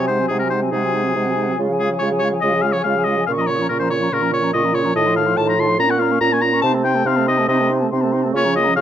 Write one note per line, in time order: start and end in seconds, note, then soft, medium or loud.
0.00 0.25 C3 medium
0.00 0.12 F#3 soft
0.00 0.11 C4 soft
0.00 0.11 G#5 soft
0.07 0.23 G#3 soft
0.07 0.21 D#4 soft
0.07 0.27 C5 medium
0.07 0.21 F#5 soft
0.20 0.31 F#3 soft
0.20 0.30 C4 soft
0.20 0.31 G#5 soft
0.28 0.68 C3 medium
0.28 0.41 D#4 soft
0.28 0.38 G#4 medium
0.28 0.43 F#5 soft
0.32 0.45 G#3 soft
0.39 0.52 C4 soft
0.39 0.49 A#4 medium
0.39 0.54 G#5 soft
0.43 0.55 F#3 soft
0.50 0.65 G#3 soft
0.50 0.63 D#4 soft
0.50 0.60 C5 medium
0.50 0.63 F#5 soft
0.62 0.74 F#3 soft
0.62 0.70 C4 soft
0.62 0.73 G#5 soft
0.71 1.11 C3 medium
0.71 0.86 G#3 soft
0.71 0.84 D#4 soft
0.71 1.56 G#4 medium
0.71 0.85 F#5 soft
0.83 0.97 F#3 soft
0.83 0.95 C4 soft
0.83 0.97 G#5 soft
0.93 1.07 G#3 soft
0.93 1.05 D#4 soft
0.93 1.10 F#5 soft
1.04 1.16 F#3 soft
1.04 1.14 C4 soft
1.08 1.18 G#5 soft
1.14 1.54 C3 medium
1.14 1.28 G#3 soft
1.14 1.27 D#4 soft
1.19 1.31 F#5 medium
1.26 1.38 F#3 soft
1.26 1.38 C4 soft
1.30 1.43 G#5 soft
1.36 1.50 G#3 soft
1.36 1.49 D#4 soft
1.42 1.53 F#5 soft
1.48 1.58 F#3 soft
1.48 1.58 C4 soft
1.48 1.60 G#5 soft
1.58 1.96 C#3 medium
1.58 1.70 G#3 soft
1.58 1.71 F4 soft
1.64 1.74 F5 soft
1.69 1.81 F3 soft
1.69 1.82 G#4 soft
1.69 1.83 G#5 soft
1.79 1.91 G#3 soft
1.79 1.92 F4 soft
1.79 1.89 G#4 medium
1.79 1.95 F5 soft
1.90 2.00 F3 soft
1.90 2.00 G#4 soft
1.90 2.03 G#5 soft
1.99 2.38 C#3 medium
1.99 2.13 G#3 soft
1.99 2.13 F4 soft
1.99 2.09 C#5 medium
2.05 2.14 F5 soft
2.11 2.23 F3 soft
2.11 2.23 G#4 soft
2.11 2.26 G#5 soft
2.19 2.33 G#3 soft
2.19 2.34 F4 soft
2.19 2.29 C#5 medium
2.24 2.35 F5 soft
2.32 2.42 F3 soft
2.32 2.43 G#4 soft
2.32 2.44 G#5 soft
2.41 2.80 C#3 medium
2.41 2.54 G#3 medium
2.41 2.55 F4 soft
2.41 2.63 D#5 medium
2.41 2.57 F5 soft
2.53 2.64 F3 soft
2.53 2.65 G#4 soft
2.53 2.68 G#5 soft
2.62 2.75 G#3 soft
2.62 2.76 F4 soft
2.62 2.74 F5 medium
2.67 2.80 F5 soft
2.72 2.84 F3 soft
2.72 2.85 G#4 soft
2.72 2.83 C#5 medium
2.78 2.87 G#5 soft
2.84 3.23 C#3 medium
2.84 2.98 G#3 soft
2.84 2.98 F4 soft
2.84 3.06 F5 medium
2.84 3.00 F5 medium
2.96 3.07 F3 soft
2.96 3.08 G#4 soft
2.96 3.10 G#5 soft
3.04 3.18 G#3 soft
3.04 3.19 F4 soft
3.04 3.26 D#5 medium
3.08 3.22 F5 soft
3.17 3.27 F3 soft
3.17 3.27 G#4 soft
3.17 3.29 G#5 soft
3.27 3.65 A#2 medium
3.27 3.40 C#3 soft
3.27 3.39 F4 soft
3.27 3.31 F5 medium
3.27 3.42 C#6 medium
3.37 3.51 F3 soft
3.37 3.49 C#4 soft
3.37 3.48 D#5 medium
3.37 3.52 A#5 soft
3.47 3.62 C#3 soft
3.47 3.61 F4 soft
3.47 3.68 C#5 medium
3.47 3.63 C#6 soft
3.59 3.69 F3 soft
3.59 3.69 C#4 soft
3.59 3.70 A#5 soft
3.69 4.07 A#2 medium
3.69 3.82 C#3 soft
3.69 3.81 F4 soft
3.69 3.79 A#4 medium
3.69 3.84 C#6 medium
3.79 3.92 F3 soft
3.79 3.92 C#4 soft
3.79 3.90 C5 medium
3.79 3.94 A#5 soft
3.90 4.02 C#3 medium
3.90 4.03 F4 soft
3.90 4.15 C#5 medium
3.90 4.04 C#6 soft
4.01 4.11 F3 soft
4.01 4.11 C#4 soft
4.01 4.12 A#5 soft
4.11 4.49 A#2 medium
4.11 4.24 C#3 medium
4.11 4.23 F4 medium
4.11 4.33 A#4 medium
4.11 4.24 C#6 medium
4.22 4.35 F3 soft
4.22 4.34 C#4 soft
4.22 4.32 A#5 soft
4.31 4.44 C#3 soft
4.31 4.44 F4 soft
4.31 4.53 C#5 medium
4.31 4.45 C#6 soft
4.42 4.54 F3 soft
4.42 4.53 C#4 soft
4.42 4.53 A#5 soft
4.53 4.91 A#2 medium
4.53 4.66 C#3 soft
4.53 4.64 F4 soft
4.53 4.76 D#5 medium
4.53 4.66 C#6 medium
4.63 4.76 F3 soft
4.63 4.75 C#4 soft
4.63 4.76 A#5 soft
4.73 4.87 C#3 soft
4.73 4.84 F4 medium
4.73 4.95 C#5 medium
4.73 4.86 C#6 medium
4.83 4.95 F3 medium
4.83 4.93 C#4 soft
4.83 4.94 A#5 medium
4.94 5.32 A2 medium
4.94 5.08 D#3 medium
4.94 5.06 F4 medium
4.94 5.16 D#5 medium
4.94 5.08 A5 medium
5.05 5.18 F3 soft
5.05 5.16 D#4 soft
5.05 5.18 C6 soft
5.15 5.29 D#3 medium
5.15 5.27 F4 medium
5.15 5.39 F5 medium
5.15 5.28 A5 medium
5.26 5.38 F3 soft
5.26 5.35 D#4 soft
5.26 5.37 C6 soft
5.36 5.74 A2 medium
5.36 5.50 D#3 medium
5.36 5.48 F4 medium
5.36 5.48 A5 medium
5.47 5.60 F3 soft
5.47 5.58 D#4 soft
5.47 5.61 A#5 medium
5.47 5.61 C6 medium
5.57 5.70 D#3 medium
5.57 5.68 F4 soft
5.57 5.70 A5 medium
5.57 5.79 C6 medium
5.67 5.78 F3 medium
5.67 5.77 D#4 soft
5.67 5.79 C6 medium
5.77 6.16 A#2 medium
5.77 5.92 C#4 medium
5.77 5.89 F4 medium
5.77 5.91 A#5 medium
5.77 5.92 A#5 medium
5.88 6.02 A#3 soft
5.88 6.00 C#4 medium
5.88 6.00 F#5 medium
5.88 6.03 C#6 medium
5.99 6.13 C#4 medium
5.99 6.11 F4 medium
5.99 6.20 F5 medium
5.99 6.13 A#5 medium
6.10 6.21 A#3 soft
6.10 6.20 C#4 medium
6.10 6.21 C#6 soft
6.21 6.58 A#2 medium
6.21 6.34 C#4 medium
6.21 6.34 F4 medium
6.21 6.34 A#5 medium
6.21 6.35 A#5 medium
6.32 6.44 A#3 soft
6.32 6.43 C#4 soft
6.32 6.43 G#5 medium
6.32 6.44 C#6 soft
6.41 6.55 C#4 medium
6.41 6.54 F4 medium
6.41 6.61 A#5 medium
6.41 6.55 A#5 medium
6.53 6.64 A#3 soft
6.53 6.63 C#4 soft
6.53 6.63 C#6 medium
6.62 7.01 C3 medium
6.62 6.77 C4 medium
6.62 6.76 D#4 medium
6.62 6.72 A5 medium
6.62 6.76 C6 medium
6.74 6.87 A3 soft
6.74 6.86 C4 soft
6.74 6.86 A5 medium
6.84 6.98 C4 medium
6.84 6.96 D#4 soft
6.84 7.08 G5 medium
6.84 6.96 C6 medium
6.94 7.07 A3 medium
6.94 7.05 C4 medium
6.94 7.05 A5 medium
7.05 7.43 C3 medium
7.05 7.20 C4 medium
7.05 7.17 D#4 soft
7.05 7.27 F5 medium
7.05 7.17 C6 medium
7.16 7.30 A3 medium
7.16 7.29 C4 medium
7.16 7.28 A5 medium
7.26 7.41 C4 medium
7.26 7.40 D#4 medium
7.26 7.48 D#5 medium
7.26 7.39 C6 medium
7.37 7.49 A3 medium
7.37 7.49 C4 soft
7.37 7.47 A5 medium
7.47 7.86 C3 medium
7.47 7.62 C4 medium
7.47 7.62 D#4 medium
7.47 7.69 D#5 medium
7.47 7.58 C6 medium
7.57 7.72 C4 medium
7.57 7.69 A5 soft
7.61 7.73 A3 medium
7.67 7.83 D#4 medium
7.67 7.80 C6 soft
7.72 7.85 C4 medium
7.78 7.91 C4 medium
7.78 7.90 A5 soft
7.83 7.93 A3 soft
7.90 8.29 C3 medium
7.90 8.05 C4 medium
7.90 8.04 D#4 medium
7.90 8.02 C6 medium
8.00 8.16 A3 medium
8.00 8.15 C4 medium
8.00 8.13 A5 soft
8.12 8.27 C4 medium
8.12 8.26 D#4 medium
8.12 8.23 C6 soft
8.21 8.34 C4 medium
8.21 8.31 A5 medium
8.26 8.35 A3 soft
8.32 8.71 C#3 medium
8.32 8.46 F4 medium
8.32 8.45 C#6 medium
8.36 8.48 A#3 medium
8.36 8.55 C#5 loud
8.44 8.59 F3 soft
8.44 8.57 C#4 medium
8.44 8.54 A#5 soft
8.53 8.68 F4 soft
8.53 8.75 D#5 medium
8.53 8.65 C#6 medium
8.58 8.70 A#3 medium
8.63 8.77 C#4 medium
8.63 8.75 A#5 medium
8.68 8.78 F3 soft
8.76 8.81 C#3 medium
8.76 8.81 F4 medium
8.76 8.81 F5 medium
8.76 8.81 C#6 medium